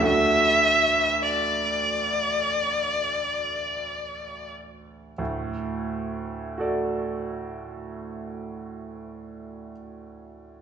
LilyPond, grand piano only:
<<
  \new Staff \with { instrumentName = "Grand piano" } { \time 4/4 \key d \major \tempo 4 = 44 r1 | r4 <fis' a' d''>2. | }
  \new Staff \with { instrumentName = "Grand piano" } { \clef bass \time 4/4 \key d \major <d, d' fis' a'>1 | <d, a,>1 | }
>>